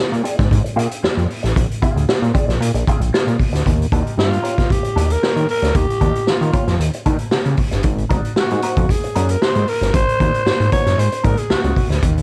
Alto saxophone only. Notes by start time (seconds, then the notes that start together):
4.19 F4
4.71 G4
5.12 A#4
5.50 A#4
5.76 G4
6.29 F4
8.39 F#4
8.91 G#4
9.31 A#4
9.42 C5
9.69 A#4
9.96 C5
10.73 C#5
10.99 C5
11.25 A#4
11.38 G#4
11.52 F#4